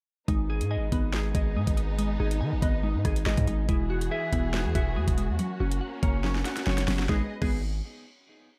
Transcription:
0.28 0.62 G#1 loud
0.28 1.12 G#3 loud
0.28 3.65 G#3 medium
0.28 3.65 B3 medium
0.28 3.65 D#4 medium
0.28 0.91 D#4 loud
0.28 kick loud
0.28 closed hi-hat medium
0.50 1.12 G#4 medium
0.50 1.34 G#4 medium
0.61 0.78 G#2 loud
0.61 closed hi-hat medium
0.71 1.33 D#5 medium
0.71 1.77 G#5 medium
0.77 0.91 G#1 medium
0.92 1.33 G#1 loud
0.92 1.99 B3 loud
0.92 2.19 D#4 medium
0.92 kick loud
0.92 closed hi-hat medium
1.13 1.55 G#3 medium
1.13 2.41 G#4 loud
1.13 snare loud
1.35 1.57 G#1 loud
1.35 2.19 G#4 medium
1.35 2.61 D#5 medium
1.35 kick medium
1.35 closed hi-hat medium
1.56 1.67 G#2 loud
1.56 1.76 G#3 loud
1.67 2.18 G#1 loud
1.67 kick medium
1.67 closed hi-hat medium
1.77 1.97 G#3 medium
1.77 closed hi-hat medium
1.99 2.82 G#3 loud
1.99 closed hi-hat medium
2.20 2.43 G#1 loud
2.20 2.82 D#4 medium
2.20 3.04 G#4 medium
2.31 closed hi-hat medium
2.41 2.54 D#3 medium
2.41 3.47 G#5 medium
2.52 2.62 G#1 loud
2.62 2.96 G#1 loud
2.62 3.69 B3 medium
2.62 3.25 D#5 medium
2.62 kick medium
2.62 closed hi-hat medium
2.83 3.25 G#3 medium
2.83 3.46 D#4 medium
2.95 3.04 G#2 loud
3.05 3.25 G#1 loud
3.05 3.69 G#4 medium
3.05 kick medium
3.05 cross-stick loud
3.05 closed hi-hat medium
3.16 closed hi-hat medium
3.26 3.37 G#1 loud
3.26 3.46 G#3 medium
3.26 3.69 D#5 medium
3.26 snare loud
3.37 3.47 G#2 loud
3.37 kick medium
3.37 closed hi-hat medium
3.47 3.68 G#1 loud
3.47 3.68 G#3 medium
3.47 3.68 D#4 medium
3.47 closed hi-hat medium
3.69 4.10 E1 loud
3.69 5.37 E3 medium
3.69 4.53 G#3 loud
3.69 5.37 B3 medium
3.69 4.31 E4 loud
3.69 7.06 F#4 medium
3.69 5.37 G#4 medium
3.69 kick loud
3.69 closed hi-hat medium
3.90 4.74 F#4 medium
3.90 4.53 F#4 medium
4.01 closed hi-hat medium
4.11 5.18 G#4 medium
4.11 4.74 E5 loud
4.33 4.67 E1 loud
4.33 5.39 B3 medium
4.33 5.39 E4 medium
4.33 kick medium
4.33 closed hi-hat medium
4.54 4.95 G#3 medium
4.54 5.39 F#4 loud
4.54 snare loud
4.65 4.75 E2 loud
4.75 4.98 E1 loud
4.75 5.39 F#4 medium
4.75 5.39 E5 medium
4.75 kick medium
4.75 closed hi-hat medium
4.96 5.07 E2 loud
4.96 5.16 G#3 loud
5.08 5.31 E1 loud
5.08 kick medium
5.08 closed hi-hat medium
5.18 5.39 G#3 medium
5.18 closed hi-hat medium
5.29 5.38 E2 loud
5.39 6.23 F#3 medium
5.39 7.07 A#3 medium
5.39 7.07 C#4 medium
5.39 closed hi-hat medium
5.60 5.81 F#1 loud
5.60 6.23 C#4 medium
5.60 6.44 F#4 medium
5.71 closed hi-hat medium
5.81 6.88 F#5 medium
6.03 6.44 F#1 loud
6.03 7.09 A#3 medium
6.03 6.65 C#5 medium
6.03 kick loud
6.03 closed hi-hat medium
6.24 6.65 F#3 medium
6.24 6.87 C#4 loud
6.24 snare medium
6.35 snare medium
6.45 7.09 F#4 medium
6.45 snare medium
6.45 closed hi-hat medium
6.57 snare medium
6.57 closed hi-hat medium
6.66 6.87 F#1 loud
6.66 6.87 F#3 medium
6.66 7.09 C#5 loud
6.66 snare medium
6.78 snare medium
6.78 closed hi-hat medium
6.88 7.08 F#1 loud
6.88 7.09 F#3 medium
6.88 7.08 C#4 medium
6.88 snare loud
6.88 open hi-hat soft
6.99 snare loud
7.09 7.22 G#1 loud
7.09 7.21 G#3 medium
7.09 7.29 G#3 medium
7.09 7.21 B3 medium
7.09 7.21 D#4 medium
7.09 7.29 G#4 medium
7.09 7.21 G#4 medium
7.09 7.29 B4 medium
7.09 7.29 D#5 medium
7.09 kick loud
7.09 snare medium
7.42 7.81 G#1 loud
7.42 7.61 G#3 medium
7.42 7.61 B3 medium
7.42 7.61 D#4 medium
7.42 7.61 G#4 medium
7.42 7.61 G#4 loud
7.42 kick loud
7.42 crash medium

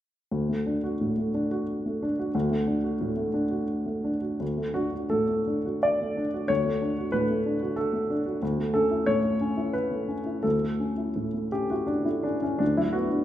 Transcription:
0.32 2.30 D2 soft
0.49 0.77 A3 soft
0.66 0.94 D4 soft
0.84 1.11 F#4 soft
1.01 1.28 A2 soft
1.18 1.45 A3 soft
1.34 1.62 D4 soft
1.51 2.05 F#4 soft
1.86 2.12 A3 soft
2.02 2.28 D4 soft
2.19 2.44 F#4 soft
2.35 4.38 D2 medium
2.51 2.77 A3 soft
2.67 2.93 D4 soft
2.84 3.10 F#4 soft
3.01 3.28 A2 soft
3.17 3.44 A3 soft
3.34 3.62 D4 soft
3.51 4.09 F#4 soft
3.86 4.16 A3 soft
4.04 4.34 D4 soft
4.22 4.40 F#4 soft
4.40 6.45 D2 soft
4.58 4.86 A3 soft
4.74 5.04 D4 soft
4.74 4.92 F#4 medium
4.93 5.22 F#4 soft
5.10 5.40 A2 soft
5.10 5.83 A4 medium
5.29 5.58 A3 soft
5.48 5.77 D4 soft
5.66 6.20 F#4 soft
5.83 6.49 D5 medium
6.01 6.27 A3 soft
6.17 6.43 D4 soft
6.34 6.59 F#4 soft
6.48 8.38 D2 soft
6.48 7.12 C#5 medium
6.65 6.91 A3 soft
6.82 7.07 D4 soft
6.98 7.23 F#4 soft
7.12 7.39 A2 soft
7.12 7.77 B4 medium
7.30 7.55 A3 soft
7.46 7.71 D4 soft
7.63 8.13 F#4 soft
7.76 8.41 A4 medium
7.93 8.19 A3 soft
8.10 8.36 D4 soft
8.26 8.42 F#4 soft
8.43 10.41 D2 medium
8.59 8.85 A3 soft
8.74 9.01 C#4 soft
8.74 9.07 A4 medium
8.91 9.18 E4 soft
9.06 9.34 A2 soft
9.06 9.74 C#5 medium
9.23 9.51 A3 soft
9.41 9.68 C#4 soft
9.57 10.13 E4 soft
9.73 10.44 B4 medium
9.91 10.20 A3 soft
10.08 10.37 C#4 soft
10.26 10.55 E4 soft
10.43 12.56 D2 soft
10.43 11.52 A4 medium
10.62 10.91 A3 soft
10.80 11.09 C#4 soft
10.97 11.27 E4 soft
11.16 11.45 A2 soft
11.34 11.63 A3 soft
11.52 11.82 C#4 soft
11.52 11.71 G4 medium
11.70 12.04 E4 soft
11.70 11.89 F#4 soft
11.87 12.06 D4 soft
12.05 12.35 A3 soft
12.05 12.24 E4 soft
12.23 12.41 C#4 soft
12.23 12.42 D4 medium
12.43 12.60 C#4 soft
12.43 12.61 E4 soft
12.59 13.24 D2 soft
12.59 12.77 D4 medium
12.77 13.05 F#3 soft
12.77 12.95 E4 medium
12.93 13.22 B3 soft
12.93 13.24 F#4 medium
13.11 13.24 D4 soft

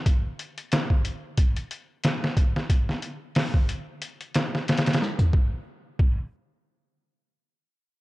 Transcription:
0.06 kick loud
0.06 closed hi-hat medium
0.39 closed hi-hat medium
0.58 closed hi-hat soft
0.72 snare loud
0.72 closed hi-hat medium
0.90 kick medium
1.05 closed hi-hat medium
1.37 kick loud
1.37 closed hi-hat medium
1.56 closed hi-hat soft
1.71 closed hi-hat medium
2.04 snare loud
2.04 closed hi-hat medium
2.24 snare soft
2.37 kick medium
2.37 closed hi-hat medium
2.56 snare soft
2.70 kick medium
2.70 closed hi-hat medium
2.89 snare soft
3.02 closed hi-hat medium
3.35 snare loud
3.35 open hi-hat medium
3.54 kick medium
3.69 closed hi-hat medium
4.02 closed hi-hat medium
4.21 closed hi-hat soft
4.34 snare medium
4.34 closed hi-hat medium
4.55 snare soft
4.68 snare medium
4.68 closed hi-hat medium
4.77 snare medium
4.77 closed hi-hat medium
4.86 snare medium
4.86 closed hi-hat medium
4.93 snare medium
4.93 closed hi-hat medium
5.02 snare soft
5.19 kick medium
5.19 closed hi-hat medium
5.33 kick loud
5.99 kick loud

